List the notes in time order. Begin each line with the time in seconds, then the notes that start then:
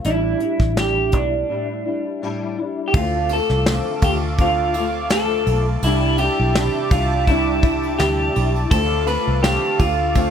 0.04 A1 A2 G3 D4 E4, closed hi-hat
0.40 G3 D4 E4, closed hi-hat
0.60 A1, kick, snare
0.77 A2 G3 D4 E4 G4, snare, closed hi-hat
1.12 B1 D4 E4, kick, closed hi-hat
1.16 G3
1.49 A2 G3 D4 E4
1.85 G3 D4 E4
2.22 A2 G3 D4 E4
2.58 G3 D4 E4
2.88 G4
2.92 D2 D3 A3 C4 F4 A4 F5 A5 D6, kick, crash
2.96 F4
3.29 C4 F4, ride
3.33 A3 A4
3.49 C2, snare
3.66 D3 A3 C4 F4, snare, ride
4.01 D2 C4 F4 G4, kick, ride
4.06 A3
4.38 D3 A3 C4 F4, kick, ride
4.74 C4 F4, ride
4.79 A3
5.10 D3 A3 A4, snare, ride
5.14 C4 F4
5.46 B1 C4 F4, ride
5.51 A3
5.82 C2 C3 G3 E4 G4 E5 D6, ride
5.86 D4 E4
6.18 D4 E4 G4, ride
6.23 G3
6.40 B1
6.55 C3 G3 D4 E4, snare, ride
6.91 C2 D4 F4, kick, ride
6.95 G3
7.27 C3 G3 D4 E4, kick, ride
7.62 D4 E4, kick, ride
7.67 G3
7.83 ride
7.99 D2 C3 G3 D4 E4 G4, snare, ride
8.35 B1 G3 D4 E4, ride
8.56 ride
8.70 D2 D3 A3 C4 F4 A4 F5 D6, kick, ride
9.05 C4 F4 B4, ride
9.09 A3
9.27 C2
9.41 D3 A3 C4 F4 G4, snare, ride
9.78 D2 A3 C4 F4, kick, ride
10.15 D3 A3 C4 F4, kick, ride